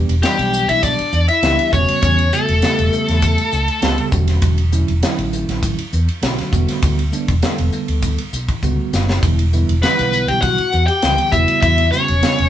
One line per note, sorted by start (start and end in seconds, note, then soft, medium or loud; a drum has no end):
0.00 0.13 E3 medium
0.00 0.13 G3 medium
0.00 0.13 B3 medium
0.00 0.13 D4 medium
0.00 0.14 G4 medium
0.09 0.21 E1 medium
0.09 ride medium
0.22 1.00 E3 medium
0.22 1.00 G3 medium
0.22 0.66 G3 medium
0.22 1.00 B3 medium
0.22 1.00 D4 medium
0.22 0.70 G4 medium
0.22 1.00 G4 medium
0.22 snare medium
0.22 hi-hat pedal medium
0.22 ride medium
0.39 0.65 B1 medium
0.39 snare soft
0.39 ride medium
0.53 hi-hat pedal medium
0.69 0.96 B1 medium
0.69 0.82 E4 medium
0.69 0.83 E5 medium
0.69 ride medium
0.83 1.26 D4 medium
0.83 1.26 D5 medium
0.83 kick medium
0.83 hi-hat pedal medium
0.83 ride medium
0.99 muted fretless electric bass stroke soft
0.99 ride medium
1.12 1.27 E2 medium
1.12 hi-hat pedal medium
1.28 1.70 E4 medium
1.28 1.70 E5 medium
1.28 ride medium
1.43 1.57 C#2 medium
1.43 1.73 E3 medium
1.43 1.71 G3 medium
1.43 1.72 B3 medium
1.43 1.73 D4 medium
1.43 1.74 G4 medium
1.43 snare medium
1.43 hi-hat pedal medium
1.43 ride medium
1.59 muted fretless electric bass stroke soft
1.59 ride medium
1.72 1.87 E1 medium
1.72 2.21 C#3 medium
1.72 2.21 G3 medium
1.72 2.22 A3 medium
1.72 2.22 B3 medium
1.72 2.01 C#4 medium
1.72 2.22 F#4 medium
1.72 2.01 C#5 medium
1.72 kick medium
1.72 hi-hat pedal medium
1.88 ride medium
2.02 2.29 E2 medium
2.02 2.31 C#4 medium
2.02 2.34 C#5 medium
2.02 kick medium
2.02 hi-hat pedal medium
2.02 ride medium
2.19 ride medium
2.33 2.53 C#3 medium
2.33 2.53 G3 medium
2.33 4.09 A3 medium
2.33 2.53 A3 medium
2.33 2.53 B3 medium
2.33 2.54 F#4 medium
2.33 4.09 A4 medium
2.33 hi-hat pedal medium
2.48 2.61 E1 medium
2.48 ride medium
2.61 3.39 C#3 medium
2.61 3.39 G3 medium
2.61 3.40 A3 medium
2.61 3.40 B3 medium
2.61 3.40 G4 medium
2.61 snare medium
2.61 hi-hat pedal medium
2.61 ride medium
2.79 2.91 E1 medium
2.79 ride medium
2.93 hi-hat pedal medium
3.08 3.35 E2 medium
3.08 snare soft
3.08 ride medium
3.22 kick medium
3.22 hi-hat pedal medium
3.22 ride medium
3.38 muted fretless electric bass stroke soft
3.38 ride medium
3.52 3.67 C#2 medium
3.52 hi-hat pedal medium
3.68 ride soft
3.82 3.97 C#2 medium
3.82 4.12 C#3 medium
3.82 4.12 G3 medium
3.82 4.10 A3 medium
3.82 4.13 B3 medium
3.82 4.13 G4 medium
3.82 snare loud
3.82 hi-hat pedal medium
3.82 ride medium
3.98 ride medium
4.10 4.39 E1 medium
4.10 4.60 D3 medium
4.10 4.61 F#3 medium
4.10 4.61 A3 medium
4.10 4.61 C#4 medium
4.10 4.61 F#4 medium
4.10 kick medium
4.10 hi-hat pedal medium
4.28 snare soft
4.28 ride medium
4.42 4.83 E1 medium
4.42 kick medium
4.42 hi-hat pedal medium
4.42 ride medium
4.58 ride medium
4.72 4.92 D3 medium
4.72 4.92 F#3 medium
4.72 4.92 A3 medium
4.72 4.92 C#4 medium
4.72 4.93 E4 medium
4.72 hi-hat pedal medium
4.88 5.01 E1 medium
4.88 ride soft
5.02 5.79 D3 medium
5.02 5.80 F#3 medium
5.02 5.80 A3 medium
5.02 5.80 C#4 medium
5.02 5.80 E4 loud
5.02 snare medium
5.02 hi-hat pedal medium
5.02 ride medium
5.19 5.45 A1 medium
5.19 ride medium
5.33 hi-hat pedal medium
5.49 5.75 A1 medium
5.49 snare soft
5.49 ride medium
5.63 kick medium
5.63 hi-hat pedal medium
5.63 ride medium
5.79 muted fretless electric bass stroke soft
5.79 ride medium
5.93 6.07 E2 medium
5.93 hi-hat pedal medium
6.08 ride medium
6.22 6.37 B1 medium
6.22 6.50 D3 medium
6.22 6.52 F#3 medium
6.22 6.51 A3 medium
6.22 6.53 C#4 medium
6.22 6.51 F#4 medium
6.22 snare medium
6.22 hi-hat pedal medium
6.22 ride medium
6.38 muted fretless electric bass stroke soft
6.38 snare soft
6.38 ride medium
6.51 6.67 E1 medium
6.51 7.01 D3 medium
6.51 7.01 G3 medium
6.51 7.01 A3 medium
6.51 7.01 B3 medium
6.51 7.01 F#4 medium
6.51 kick medium
6.51 hi-hat pedal medium
6.68 muted fretless electric bass stroke soft
6.68 snare soft
6.68 ride medium
6.82 7.09 D2 medium
6.82 kick medium
6.82 hi-hat pedal medium
6.82 ride medium
6.99 ride medium
7.11 7.32 D3 medium
7.11 7.32 G3 medium
7.11 7.32 A3 medium
7.11 7.32 B3 medium
7.11 7.33 D4 medium
7.11 hi-hat pedal medium
7.28 7.41 E1 medium
7.28 kick medium
7.28 ride medium
7.42 8.20 D3 medium
7.42 8.20 G3 medium
7.42 8.20 A3 medium
7.42 8.20 B3 medium
7.42 8.20 A4 medium
7.42 snare medium
7.42 hi-hat pedal medium
7.42 ride medium
7.58 7.71 E1 medium
7.58 ride medium
7.72 hi-hat pedal medium
7.88 8.15 D2 medium
7.88 ride medium
8.02 kick medium
8.02 hi-hat pedal medium
8.02 ride medium
8.18 ride medium
8.33 8.47 B1 medium
8.33 hi-hat pedal medium
8.49 kick medium
8.49 ride medium
8.63 8.77 C#2 medium
8.63 9.01 D3 medium
8.63 9.02 G3 medium
8.63 9.02 A3 medium
8.63 9.02 B3 medium
8.63 9.02 F#4 medium
8.63 kick soft
8.63 hi-hat pedal medium
8.93 9.19 F#1 medium
8.93 snare medium
8.93 hi-hat pedal medium
9.10 snare medium
9.23 9.63 E1 medium
9.23 9.42 D3 medium
9.23 9.43 E3 medium
9.23 9.43 G3 medium
9.23 9.43 B3 medium
9.23 9.43 E4 medium
9.23 kick medium
9.23 hi-hat pedal medium
9.23 ride medium
9.39 ride soft
9.53 9.73 D3 medium
9.53 9.73 E3 medium
9.53 9.73 G3 medium
9.53 9.73 B3 medium
9.53 9.73 E4 medium
9.53 hi-hat pedal medium
9.69 9.81 E1 medium
9.69 ride soft
9.82 10.60 D3 medium
9.82 10.60 E3 medium
9.82 10.60 G3 medium
9.82 10.25 B3 medium
9.82 10.60 B3 medium
9.82 10.61 E4 medium
9.82 10.30 B4 medium
9.82 snare medium
9.82 hi-hat pedal medium
9.82 ride medium
9.99 10.25 B1 medium
9.99 snare soft
9.99 ride medium
10.13 hi-hat pedal medium
10.28 10.55 B1 medium
10.28 10.42 G4 medium
10.28 10.41 G5 medium
10.28 ride medium
10.41 10.86 F#4 medium
10.41 10.85 F#5 medium
10.41 kick medium
10.41 hi-hat pedal medium
10.41 ride medium
10.58 muted fretless electric bass stroke soft
10.58 ride medium
10.72 10.87 E2 medium
10.72 hi-hat pedal medium
10.87 11.29 G4 medium
10.87 11.33 G5 medium
10.87 ride medium
11.02 11.17 C#2 medium
11.02 11.33 D3 medium
11.02 11.33 E3 medium
11.02 11.30 G3 medium
11.02 11.32 B3 medium
11.02 11.34 G4 medium
11.02 snare loud
11.02 hi-hat pedal medium
11.02 ride medium
11.18 ride medium
11.31 11.47 E1 medium
11.31 11.81 C#3 medium
11.31 11.81 G3 medium
11.31 11.81 A3 medium
11.31 11.81 B3 medium
11.31 11.61 E4 medium
11.31 11.81 F#4 medium
11.31 11.60 E5 medium
11.31 kick medium
11.31 hi-hat pedal medium
11.48 ride medium
11.61 11.89 E2 medium
11.61 11.91 E4 medium
11.61 11.91 E5 medium
11.61 kick loud
11.61 hi-hat pedal medium
11.61 ride medium
11.78 ride medium
11.91 12.12 C#3 medium
11.91 12.12 G3 medium
11.91 12.12 A3 medium
11.91 12.12 B3 medium
11.91 12.49 C#4 medium
11.91 12.13 F#4 medium
11.91 12.49 C#5 medium
11.91 snare soft
11.91 hi-hat pedal medium
12.08 12.21 E1 medium
12.08 ride medium
12.21 12.49 C#3 medium
12.21 12.49 G3 medium
12.21 12.49 A3 medium
12.21 12.49 B3 medium
12.21 12.49 C#4 medium
12.21 snare medium
12.21 hi-hat pedal medium
12.21 ride medium
12.38 12.49 E1 medium
12.38 ride medium